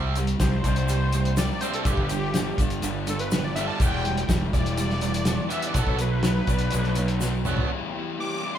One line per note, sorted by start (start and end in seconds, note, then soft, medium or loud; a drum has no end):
0.00 0.34 C2 medium
0.00 0.15 C3 medium
0.00 1.12 C3 medium
0.00 0.15 G3 medium
0.00 0.15 C4 medium
0.15 0.39 C3 medium
0.15 0.40 G3 medium
0.15 0.39 G3 medium
0.15 closed hi-hat medium
0.15 shaker medium
0.27 closed hi-hat medium
0.40 0.61 C2 loud
0.40 0.62 C3 medium
0.40 0.89 G3 medium
0.40 0.63 G3 medium
0.40 1.34 C5 medium
0.40 kick medium
0.40 snare loud
0.40 closed hi-hat medium
0.40 shaker loud
0.64 1.49 C2 medium
0.64 0.87 C3 medium
0.64 0.87 G3 medium
0.64 1.61 D4 medium
0.64 kick medium
0.64 closed hi-hat medium
0.64 shaker medium
0.76 closed hi-hat medium
0.88 1.11 C3 medium
0.88 2.35 G3 medium
0.88 1.11 G3 medium
0.88 closed hi-hat medium
0.88 shaker loud
1.12 1.86 C3 medium
1.12 1.36 C3 medium
1.12 1.36 G3 medium
1.12 closed hi-hat medium
1.12 shaker medium
1.25 closed hi-hat medium
1.37 1.59 C3 medium
1.37 1.60 G3 medium
1.37 1.86 C4 medium
1.37 1.60 D5 medium
1.37 snare loud
1.37 closed hi-hat medium
1.37 shaker loud
1.61 1.85 C3 medium
1.61 1.84 G3 loud
1.61 1.85 C4 loud
1.61 1.86 D4 medium
1.61 1.73 C5 medium
1.61 closed hi-hat medium
1.61 shaker medium
1.74 1.86 A4 medium
1.74 closed hi-hat medium
1.85 1.96 G1 medium
1.85 2.08 G2 medium
1.85 3.08 G2 medium
1.85 2.09 D3 medium
1.85 2.09 G3 loud
1.85 2.10 G4 medium
1.85 kick loud
1.85 closed hi-hat medium
1.85 shaker loud
1.97 2.51 G1 medium
1.97 kick medium
2.09 2.32 G2 medium
2.09 2.33 D3 medium
2.09 3.07 D3 medium
2.09 2.58 G4 loud
2.09 closed hi-hat medium
2.09 shaker medium
2.34 2.57 G2 medium
2.34 2.57 D3 medium
2.34 2.82 G3 medium
2.34 snare loud
2.34 closed hi-hat medium
2.34 shaker loud
2.58 2.80 G1 medium
2.58 2.81 G2 medium
2.58 2.81 D3 medium
2.58 3.55 D4 medium
2.58 kick medium
2.58 closed hi-hat medium
2.58 shaker medium
2.70 closed hi-hat medium
2.82 3.68 G1 loud
2.82 3.05 G2 medium
2.82 3.06 D3 medium
2.82 3.81 G3 medium
2.82 closed hi-hat medium
2.82 shaker loud
3.07 3.29 G2 medium
3.07 3.30 D3 medium
3.07 3.81 D3 medium
3.07 3.19 A4 medium
3.07 closed hi-hat medium
3.07 shaker medium
3.19 3.44 B4 medium
3.19 closed hi-hat medium
3.31 3.54 G2 medium
3.31 3.54 D3 medium
3.31 5.28 B3 medium
3.31 snare loud
3.31 closed hi-hat medium
3.31 shaker loud
3.44 3.55 D5 medium
3.56 3.79 G2 loud
3.56 3.80 D3 loud
3.56 3.80 G3 loud
3.56 3.81 D4 medium
3.56 3.67 E5 medium
3.56 closed hi-hat medium
3.56 shaker medium
3.68 3.79 A5 medium
3.80 4.23 E1 medium
3.80 5.02 E3 medium
3.80 4.03 E3 medium
3.80 4.04 G3 medium
3.80 4.04 B3 loud
3.80 4.29 G5 loud
3.80 kick loud
3.80 closed hi-hat medium
3.80 shaker medium
4.05 4.27 E3 medium
4.05 4.27 G3 medium
4.05 4.29 G3 medium
4.05 closed hi-hat medium
4.17 closed hi-hat medium
4.29 4.51 E1 loud
4.29 4.51 E3 medium
4.29 4.51 G3 medium
4.29 4.78 G3 medium
4.29 kick medium
4.29 snare loud
4.29 closed hi-hat medium
4.29 shaker loud
4.53 5.38 E1 medium
4.53 4.76 E3 medium
4.53 4.76 G3 medium
4.53 5.51 E4 medium
4.53 5.48 D5 loud
4.53 kick medium
4.53 closed hi-hat medium
4.53 shaker medium
4.66 closed hi-hat medium
4.77 5.00 E3 medium
4.77 5.00 G3 medium
4.77 5.76 G3 medium
4.77 closed hi-hat medium
4.77 shaker medium
4.90 snare soft
5.01 5.24 E3 medium
5.01 5.75 E3 medium
5.01 5.24 G3 medium
5.01 closed hi-hat medium
5.01 shaker medium
5.14 closed hi-hat medium
5.25 5.47 E3 medium
5.25 5.48 G3 medium
5.25 7.22 B3 medium
5.25 snare loud
5.25 closed hi-hat medium
5.25 shaker medium
5.49 5.73 E3 loud
5.49 5.73 G3 loud
5.49 5.74 B3 loud
5.49 5.76 E4 medium
5.49 closed hi-hat medium
5.49 shaker medium
5.53 5.64 E5 medium
5.62 closed hi-hat medium
5.67 5.77 D5 medium
5.74 5.86 B1 loud
5.74 5.97 B2 medium
5.74 6.97 B2 medium
5.74 5.97 F#3 medium
5.74 5.98 B3 loud
5.74 kick loud
5.74 closed hi-hat medium
5.74 shaker loud
5.79 6.01 A4 medium
5.87 6.40 B1 loud
5.87 kick medium
5.98 6.21 B2 medium
5.98 6.21 F#3 medium
5.98 6.23 F#3 medium
5.98 7.42 B4 loud
5.98 closed hi-hat medium
5.98 shaker medium
6.23 6.46 B2 medium
6.23 6.46 F#3 loud
6.23 6.73 F#3 medium
6.23 snare loud
6.23 closed hi-hat medium
6.23 shaker medium
6.47 6.69 B1 medium
6.47 6.70 B2 medium
6.47 6.70 F#3 medium
6.47 7.45 D4 medium
6.47 kick medium
6.47 closed hi-hat medium
6.47 shaker medium
6.59 closed hi-hat medium
6.71 7.58 B1 loud
6.71 6.94 B2 medium
6.71 6.94 F#3 medium
6.71 7.70 F#3 medium
6.71 closed hi-hat medium
6.71 shaker medium
6.83 snare soft
6.95 7.19 B2 medium
6.95 7.70 B2 medium
6.95 7.19 F#3 medium
6.95 closed hi-hat medium
6.95 shaker medium
7.08 closed hi-hat medium
7.21 7.43 B2 medium
7.21 7.43 F#3 medium
7.21 7.70 B3 medium
7.21 snare medium
7.21 shaker loud
7.45 7.68 B2 loud
7.45 7.69 F#3 loud
7.45 7.69 B3 loud
7.45 7.70 D4 medium
7.45 mid tom medium
7.45 shaker medium
7.57 floor tom medium
7.69 7.94 E3 medium
7.69 7.94 G3 loud
7.69 8.58 B3 medium
7.69 7.95 B3 loud
7.69 7.96 E4 loud
7.69 8.58 G4 medium
7.69 8.58 E5 medium
7.69 8.58 G5 loud
7.94 8.18 E3 medium
7.94 8.18 G3 loud
7.94 8.19 B3 medium
7.94 8.19 E4 loud
8.18 8.41 E3 medium
8.18 8.42 G3 medium
8.18 8.43 B3 medium
8.18 8.43 E4 loud
8.18 8.53 D6 loud
8.42 8.58 E3 medium
8.42 8.58 G3 loud
8.42 8.58 B3 loud
8.42 8.58 E4 loud
8.55 8.58 C6 medium